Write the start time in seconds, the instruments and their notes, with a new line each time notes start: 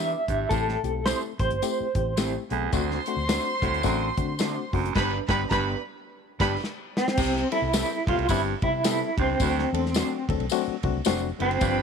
Already playing: fingered electric bass E3, reed electric piano B3 D4 E4 G4, clean electric guitar E5
0.28 fingered electric bass G#1, baritone saxophone G2, reed electric piano B3 D4 E4 G4, kick, closed hi-hat
0.49 fingered electric bass A1, baritone saxophone A2, reed electric piano A3 C4 E4 G4, clean electric guitar A4, kick, closed hi-hat, tambourine
0.69 snare
0.83 fingered electric bass B1, reed electric piano A3 C4 E4 G4, closed hi-hat
1.06 reed electric piano A3 C4 E4 A4, clean electric guitar C4 E4 G4 C5, snare, closed hi-hat, tambourine
1.39 fingered electric bass A1, reed electric piano A3 C4 E4 G4, clean electric guitar C5, kick, closed hi-hat
1.51 fingered electric bass G1, closed hi-hat
1.62 reed electric piano A3 C4 E4 G4, closed hi-hat, tambourine
1.80 muted fingered electric bass stroke
1.95 fingered electric bass A1, reed electric piano A3 C4 E4 G4, kick, closed hi-hat
2.17 reed electric piano A3 C4 E4 G4, clean electric guitar C4 E4 G4 C5, snare, closed hi-hat, tambourine
2.50 fingered electric bass B1, baritone saxophone E2, reed electric piano A3 C4 E4 A4, closed hi-hat
2.72 fingered electric bass D2, baritone saxophone D2, reed electric piano A3 C4 D4 F#4, violin section C5 C6, kick, closed hi-hat, tambourine
2.91 snare
3.06 reed electric piano A3 C4 D4 F#4, closed hi-hat
3.17 fingered electric bass D2
3.28 clean electric guitar A3 D4 F#4 C5, reed electric piano A3 C4 D4 F#4, snare, closed hi-hat, tambourine
3.62 fingered electric bass C2, baritone saxophone A2, reed electric piano A3 C4 D4 F#4, kick, closed hi-hat
3.73 fingered electric bass D2, closed hi-hat
3.83 fingered electric bass A1, baritone saxophone F#2, reed electric piano A3 C4 D4 F#4, kick, closed hi-hat, tambourine
4.17 fingered electric bass D3, reed electric piano A3 C4 D4 F#4, kick, closed hi-hat
4.39 clean electric guitar A3 D4 F#4 C5, reed electric piano A3 C4 D4 F#4, snare, closed hi-hat, tambourine
4.73 fingered electric bass F#1, baritone saxophone F#2, reed electric piano A3 C4 D4 F#4, kick, open hi-hat
4.85 closed hi-hat
4.95 fingered electric bass G1, baritone saxophone G2, reed electric piano G3 B3 D4 G4, clean electric guitar B3 D4 G4 B4, violin section B4 B5, kick, snare, crash
5.28 fingered electric bass G1, baritone saxophone G2, reed electric piano G3 B3 D4 G4, clean electric guitar B3 D4 G4 B4, violin section B4 B5, kick, snare
5.50 fingered electric bass G1, baritone saxophone G2, reed electric piano G3 B3 D4 G4, clean electric guitar B3 D4 G4 B4, violin section B4 B5, kick, snare
6.39 fingered electric bass G1, baritone saxophone G2, reed electric piano G3 B3 D4 G4 G5, clean electric guitar B3 D4 G4 B4, violin section B4 B5, kick, snare, crash
6.64 snare
6.97 clean electric guitar C4, snare
7.08 snare
7.17 fingered electric bass C2, baritone saxophone C3, reed electric piano G3 B3 C4 E4 G4, kick, crash, tambourine
7.36 snare
7.52 reed electric piano G3 B3 C4 E4 A4, clean electric guitar E4, ride
7.62 fingered electric bass C2
7.73 reed electric piano G3 B3 C4 E4 A4, clean electric guitar B3 E4 G4 B4, snare, ride, tambourine
8.07 fingered electric bass B1, baritone saxophone A2, reed electric piano G3 B3 C4 E4 G4, clean electric guitar F4, kick, ride
8.18 fingered electric bass C2, ride
8.28 fingered electric bass G1, baritone saxophone G2, reed electric piano G3 B3 C4 E4 G4, clean electric guitar E4, kick, ride, tambourine
8.62 fingered electric bass C3, reed electric piano G3 B3 C4 E4 G4, clean electric guitar E4, kick, ride
8.84 reed electric piano G3 B3 C4 E4 A4, clean electric guitar B3 E4 G4 B4, snare, ride, tambourine
9.18 fingered electric bass C#2, baritone saxophone G2, reed electric piano G3 B3 C4 E4 G4, clean electric guitar C4, kick, ride
9.40 baritone saxophone D2, fingered electric bass D2, reed electric piano F#3 A3 C4 D4 F#4, kick, ride, tambourine
9.59 snare
9.73 fingered electric bass E2, reed electric piano F#3 A3 C4 D4 A4, ride
9.86 snare
9.94 reed electric piano F#3 A3 C4 D4 F#4, clean electric guitar A3 D4 F#4 C5, snare, ride, tambourine
10.29 fingered electric bass D2, reed electric piano F#3 A3 C4 D4 A4, kick, ride
10.39 fingered electric bass B1, ride
10.50 reed electric piano F#3 A3 C4 D4 F#4, ride, tambourine
10.67 muted fingered electric bass stroke
10.83 fingered electric bass C2, reed electric piano F#3 A3 C4 D4 F#4, kick, ride
11.05 fingered electric bass F1, reed electric piano F#3 A3 C4 D4 F#4, clean electric guitar A3 D4 F#4 C5, snare, ride, tambourine
11.39 fingered electric bass F#1, baritone saxophone D2, reed electric piano F#3 A3 C4 D4 E4, clean electric guitar C4, ride
11.51 ride
11.61 fingered electric bass G1, baritone saxophone G2, reed electric piano F3 G3 B3 D4 F4, violin section B4 B5, kick, ride, tambourine